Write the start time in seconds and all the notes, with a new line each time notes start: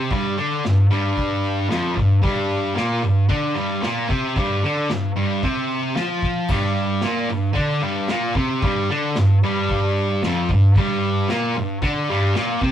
Already playing: C3 C4
0.10 G2 G3, kick, open hi-hat
0.37 D3 D4, open hi-hat
0.65 G2, snare, open hi-hat
0.91 G2 G3, open hi-hat
1.17 kick, open hi-hat
1.44 open hi-hat
1.69 F2 F3, snare, open hi-hat
1.96 G2, kick, open hi-hat
2.22 G2 G3, kick, open hi-hat
2.51 open hi-hat
2.75 A#2 A#3, snare, open hi-hat
3.02 G2, open hi-hat
3.29 D3 D4, kick, open hi-hat
3.55 G2 G3, open hi-hat
3.81 A#2 A#3, snare, open hi-hat
4.09 C3 C4, kick, open hi-hat
4.36 G2 G3, kick, open hi-hat
4.63 D3 D4, open hi-hat
4.89 G2, snare, open hi-hat
5.16 G2 G3, open hi-hat
5.43 C3 C4, kick, open hi-hat
5.71 open hi-hat
5.96 F3 F4, snare, open hi-hat
6.22 kick, open hi-hat
6.48 G2 G3, kick, crash
6.75 open hi-hat
7.01 A#2 A#3, snare, open hi-hat
7.29 G2, open hi-hat
7.54 D3 D4, kick, open hi-hat
7.82 G2 G3, open hi-hat
8.08 A#2 A#3, snare, open hi-hat
8.33 C3 C4, kick, open hi-hat
8.62 G2 G3, kick, open hi-hat
8.89 D3 D4, open hi-hat
9.15 G2, snare, open hi-hat
9.42 G2 G3, open hi-hat
9.69 kick, open hi-hat
9.96 open hi-hat
10.23 F2 F3, snare, open hi-hat
10.48 G2, kick, open hi-hat
10.76 G2 G3, kick, open hi-hat
11.03 open hi-hat
11.28 A#2 A#3, snare, open hi-hat
11.55 G2, open hi-hat
11.82 D3 D4, kick, open hi-hat
12.09 G2 G3, open hi-hat
12.34 A#2 A#3, snare, open hi-hat
12.61 C3 C4, kick, open hi-hat